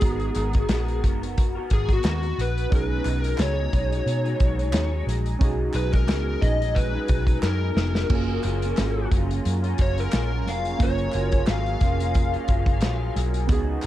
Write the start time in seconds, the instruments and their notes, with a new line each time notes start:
Already playing: electric slide guitar G#4
0.00 picked electric bass G#1, clean electric guitar G#3 B3 F#4 A#4, synth keys B3 D#4 F#4, kick, closed hi-hat
0.05 synth keys A#5
0.20 closed hi-hat
0.35 picked electric bass G#1, clean electric guitar G#3 B3 F#4 A#4, clap, closed hi-hat
0.53 clean electric guitar B3 F#4 A#4, kick, closed hi-hat
0.69 picked electric bass A#1, clean electric guitar G#3 B3 F#4 A#4, snare, clap, closed hi-hat
0.88 closed hi-hat
1.03 picked electric bass F#1, clean electric guitar G#3 B3 F#4 A#4, kick, closed hi-hat
1.22 clean electric guitar B3 F#4 A#4, closed hi-hat
1.38 kick, closed hi-hat
1.55 clean electric guitar B3 F#4 A#4
1.70 picked electric bass G#1, clean electric guitar G#3 B3 F#4 A#4, electric slide guitar G#4, kick, closed hi-hat
1.89 clean electric guitar B3 F#4 A#4, kick, closed hi-hat
1.93 electric slide guitar F#4
2.03 picked electric bass D#2, clean electric guitar G#3 B3 F#4 A#4, snare, clap, closed hi-hat
2.23 clean electric guitar B3 F#4, closed hi-hat
2.38 picked electric bass A#1, electric slide guitar B4, closed hi-hat
2.58 closed hi-hat
2.69 picked electric bass B1, clean electric guitar B2 F#3 G#3 D#4, synth keys C#4 D#4 F#4, kick, closed hi-hat
2.74 synth keys G#4, electric slide guitar B4
3.05 picked electric bass B1, clean electric guitar B2 F#3 G#3 D#4, clap, closed hi-hat
3.23 clean electric guitar F#3 G#3 D#4, electric slide guitar A#4, closed hi-hat
3.38 picked electric bass C#2, clean electric guitar B2 F#3 G#3 D#4, electric slide guitar C#5, snare, clap, closed hi-hat
3.72 picked electric bass B1, clean electric guitar B2 F#3 G#3 D#4, kick, closed hi-hat
3.91 clean electric guitar F#3 G#3 D#4, closed hi-hat
4.06 picked electric bass B2, closed hi-hat
4.24 clean electric guitar F#3 G#3 D#4, closed hi-hat
4.40 picked electric bass B1, clean electric guitar B2 F#3 G#3 D#4, kick, closed hi-hat
4.58 clean electric guitar F#3 G#3 D#4, closed hi-hat
4.72 picked electric bass D#2, clean electric guitar B2 F#3 G#3 D#4, snare, clap, closed hi-hat
4.92 clean electric guitar F#3 G#3 D#4
5.07 picked electric bass A#1, snare, closed hi-hat
5.26 closed hi-hat
5.39 picked electric bass B1, clean electric guitar B2 F#3 G#3 D#4, synth keys C#4 D#4 F#4, kick, closed hi-hat
5.44 synth keys G#4
5.73 picked electric bass B1, clean electric guitar B2 F#3 G#3 D#4, electric slide guitar B4, clap, closed hi-hat
5.92 clean electric guitar F#3 G#3 D#4, electric slide guitar A#4, kick, closed hi-hat
6.08 picked electric bass C#2, clean electric guitar B2 F#3 G#3 D#4, snare, clap, closed hi-hat
6.41 picked electric bass A#1, clean electric guitar B2 F#3 G#3 D#4, electric slide guitar D#5, kick, closed hi-hat
6.60 clean electric guitar F#3 G#3 D#4, closed hi-hat
6.75 electric slide guitar B4, kick, closed hi-hat
6.93 clean electric guitar F#3 G#3 D#4
7.08 picked electric bass B1, clean electric guitar B2 F#3 G#3 D#4, kick, closed hi-hat
7.27 clean electric guitar F#3 G#3 D#4, kick, closed hi-hat
7.42 picked electric bass F#2, clean electric guitar B2 F#3 G#3 D#4, electric slide guitar A#4, snare, clap
7.76 picked electric bass F1, snare
7.95 snare
8.09 picked electric bass F#1, clean electric guitar F#3 A#3 C#4 F4, analog synth pad F#3 C#4 F4 G#4 A#4, synth keys A#3 C#4 F4, kick, crash
8.13 synth keys G#4
8.43 picked electric bass F#1, clean electric guitar F#3 A#3 C#4 F4, clap, closed hi-hat
8.62 clean electric guitar A#3 C#4 F4, closed hi-hat
8.77 picked electric bass G#1, clean electric guitar F#3 A#3 C#4 F4, snare, clap, closed hi-hat
9.12 picked electric bass F#1, clean electric guitar F#3 A#3 C#4 F4, kick, closed hi-hat
9.29 clean electric guitar A#3 C#4 F4, closed hi-hat
9.45 picked electric bass F#2, closed hi-hat
9.63 clean electric guitar A#3 C#4 F4, closed hi-hat
9.78 picked electric bass F#1, clean electric guitar F#3 A#3 C#4 F4, electric slide guitar C#5, kick, closed hi-hat
9.97 clean electric guitar A#3 C#4 F4, electric slide guitar A#4, closed hi-hat
10.11 picked electric bass A#1, clean electric guitar F#3 A#3 C#4 F4, snare, clap, closed hi-hat
10.31 clean electric guitar A#3 C#4 F4
10.47 picked electric bass F1, electric slide guitar F5, snare, closed hi-hat
10.65 closed hi-hat
10.78 picked electric bass F#1, clean electric guitar F#3 A#3 C#4 F4, synth keys A#3 C#4 F4, kick, closed hi-hat
10.83 synth keys A#4, electric slide guitar C#5
10.98 closed hi-hat
11.12 picked electric bass F#1, clean electric guitar F#3 A#3 C#4 F4, clap, closed hi-hat
11.32 clean electric guitar A#3 C#4 F4, kick, closed hi-hat
11.46 picked electric bass G#1, clean electric guitar F#3 A#3 C#4 F4, electric slide guitar F5, snare, clap, closed hi-hat
11.66 closed hi-hat
11.80 picked electric bass F1, clean electric guitar F#3 A#3 C#4 F4, kick, closed hi-hat
11.99 clean electric guitar A#3 C#4 F4, closed hi-hat
12.14 kick, closed hi-hat
12.33 clean electric guitar A#3 C#4 F4, closed hi-hat
12.46 picked electric bass F#1, clean electric guitar F#3 A#3 C#4 F4, kick, closed hi-hat
12.66 clean electric guitar A#3 C#4 F4, kick, closed hi-hat
12.81 picked electric bass A#1, clean electric guitar F#3 A#3 C#4 F4, snare, clap, closed hi-hat
13.16 picked electric bass B1, snare, closed hi-hat
13.34 closed hi-hat
13.47 picked electric bass C#2, clean electric guitar C#3 B3 D#4 F#4, analog synth pad C#3 G#3 B3 D#4 F#4, synth keys B3 D#4 F#4, kick, closed hi-hat
13.52 synth keys G#4
13.82 clean electric guitar C#3, clap, closed hi-hat